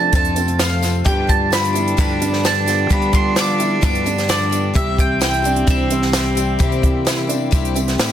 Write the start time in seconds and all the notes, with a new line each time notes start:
Already playing: F1 F2 C3 F3 A3 C4 D4 F4 A4 C5 A5
0.13 F2 F3 A3 C4 F4 A4 C5 A5, kick, closed hi-hat, tambourine
0.25 closed hi-hat
0.36 F3 A3 C4 F4 A4 C5, closed hi-hat, tambourine
0.48 closed hi-hat
0.58 F3 A3 C4 F4 A4 F5, snare, closed hi-hat, tambourine
0.81 F3 A3 C4 F4 A4 C5, snare, closed hi-hat, tambourine
1.04 G1 G2 D3 F3 G3 B3 D4 F4 G4 D5 G5, kick, closed hi-hat
1.27 F3 B3 D4 F4 G4 D5 A5, kick, closed hi-hat
1.50 F3 B3 D4 F4 G4 B5, snare, closed hi-hat, tambourine
1.65 closed hi-hat
1.73 F3 B3 D4 E4 F4 G4 D5, closed hi-hat, tambourine
1.88 closed hi-hat
1.97 G2 D3 F3 B3 D4 F4 G4 D5 B5, kick, closed hi-hat, tambourine
2.20 F3 B3 D4 F4 G4 D5, closed hi-hat, tambourine
2.33 snare
2.43 F3 B3 D4 F4 G4 D5 A5, snare, closed hi-hat, tambourine
2.66 F3 B3 D4 F4 G4 D5, snare, closed hi-hat, tambourine
2.89 G1 G2 D3 F3 G3 B3 D4 F4 G4 F5 B5, kick, closed hi-hat
3.02 closed hi-hat
3.12 F3 B3 D4 F4 G4 D5 C6, kick, closed hi-hat
3.35 F3 B3 D4 F4 G4 D5 D6, snare, closed hi-hat, tambourine
3.58 F3 B3 D4 E4 F4 G4 D5, closed hi-hat, tambourine
3.81 G2 D3 F3 B3 D4 F4 G4 D5 D6, kick, closed hi-hat, tambourine
3.95 closed hi-hat
4.04 F3 B3 D4 F4 G4 D5, closed hi-hat, tambourine
4.18 snare, closed hi-hat
4.28 F3 B3 F4 G4 D5, snare, closed hi-hat, tambourine
4.50 F3 B3 D4 F4 G4 D5, closed hi-hat, tambourine
4.74 C2 C3 E3 G3 C4 E4 G4 C5 E5, kick, closed hi-hat
4.96 G3 C4 E4 G4 C5 E5 G5, kick, closed hi-hat
5.19 G3 C4 E4 G4 C5 E5, snare, closed hi-hat, tambourine
5.24 G5
5.34 closed hi-hat
5.42 G3 C4 D4 E4 G4 C5 E5, closed hi-hat, tambourine
5.56 closed hi-hat
5.67 C2 C3 G3 C4 E4 G4 C5 E5, kick, closed hi-hat, tambourine
5.90 G3 C4 E4 G4 C5 E5, closed hi-hat, tambourine
6.02 snare
6.12 G3 C4 E4 G4 C5 D5, snare, closed hi-hat, tambourine
6.35 G3 C4 E4 G4 C5 D5, closed hi-hat, tambourine
6.59 C2 C3 G3 A#3 C4 E4 G4 C5 E5, kick, closed hi-hat, tambourine
6.72 closed hi-hat
6.82 G3 C4 E4 G4 C5 E5, kick, closed hi-hat
7.05 G3 C4 E4 G4 C5 E5, snare, closed hi-hat, tambourine
7.27 G3 C4 D4 E4 G4 C5 E5, closed hi-hat, tambourine
7.51 C2 C3 G3 C4 E4 G4 C5 E5, kick, closed hi-hat, tambourine
7.65 closed hi-hat
7.74 G3 C4 E4 G4 C5 E5, closed hi-hat, tambourine
7.88 snare, closed hi-hat
7.98 A2 G3 C4 E4 G4 C5 E5, snare, closed hi-hat, tambourine